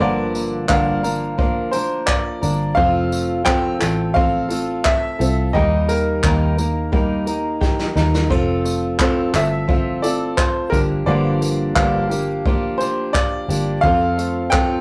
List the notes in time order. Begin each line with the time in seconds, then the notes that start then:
0.00 G1 G2 D3 F3 A#3 D4 F4 A#4 D5
0.35 A#3, tambourine
0.68 G1 G2 D3 F3 A#3 D4 A#4 F5, kick, clap
1.03 F3 A#3 D4 A#4, tambourine
1.38 F3 A#3 D4 F4 A#4, kick
1.71 F3 A#3 D4 A#4 C5, tambourine
2.06 F4 D5, kick, clap
2.42 G1 F3 A#3 D4 A#4, tambourine
2.75 F1 F3 C4 F4 A4 F5, kick
3.12 A3, tambourine
3.45 F3 C4 F4 A4 G5, kick, clap
3.79 A1 A3 C4 F4 A4, clap, tambourine
4.14 F3 C4 F4 A4 F5, kick
4.49 A3 C4 F4 A4, tambourine
4.84 F4 E5, kick, clap
5.19 C2 C4 F4 A4, tambourine
5.53 D#2 D#3 G3 A#3 D#4 G4 A#4 D#5, kick
5.89 A#3 A#4, tambourine
6.23 D#2 D#3 G3 A#3 D#4 A#4, kick, clap
6.57 A#3 D#4 A#4, tambourine
6.92 G3 A#3 D#4 G4 A#4, kick
7.26 A#3 D#4 A#4, tambourine
7.61 G4, kick, snare
7.79 snare
7.95 D#2 A#3 D#4 A#4, snare
8.14 snare
8.30 F1 F3 C4 F4 A4, kick, splash
8.65 A3, tambourine
8.99 F3 C4 F4 A4, kick, clap
9.34 G1 A3 C4 F4 A4 E5, clap, tambourine
9.68 F3 C4 F4 A4, kick
10.02 A3 C4 F4 A4 D5, tambourine
10.37 F4 C5, kick, clap
10.70 G1 D3 A#3 D4 G4 A#4, kick, tambourine
10.74 F3
11.06 G1 G2 D3 F3 A#3 D4 F4 G4 D5
11.41 A#3, tambourine
11.75 G1 G2 D3 F3 A#3 D4 G4 F5, kick, clap
12.10 F3 A#3 D4 G4, tambourine
12.45 F3 A#3 D4 F4 G4, kick
12.78 A#3 D4 G4 C5, tambourine
12.82 F3
13.13 F4 D5, kick, clap
13.48 G1 F3 A#3 D4 G4, tambourine
13.81 F2 F3 C4 F4 F5, kick
13.86 A4
14.18 A3, tambourine
14.50 F3 C4 F4 A4 G5, kick, clap